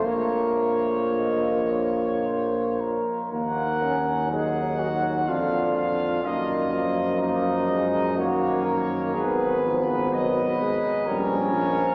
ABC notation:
X:1
M:3/4
L:1/8
Q:1/4=62
K:Bbm
V:1 name="Trumpet section"
d4- d z | [K:Ebm] g2 g2 f f | e2 e2 d2 | c2 e2 d2 |]
V:2 name="Flugelhorn"
B2 e d c B | [K:Ebm] B2 A G F2- | F2 E2 G B | A z c2 B2 |]
V:3 name="Trombone section"
F4- F z | [K:Ebm] B, D E2 =D2 | B,2 B, A, B,2 | C4 D2 |]
V:4 name="Trombone" clef=bass
B,4- B, z | [K:Ebm] E,2 G,2 =D,2 | E, F,3 E,2 | E, F, G, A, =G, F, |]
V:5 name="Tuba" clef=bass
B,,,4- B,,, z | [K:Ebm] E,,4 F,,2 | G,,6 | A,,,3 z B,,,2 |]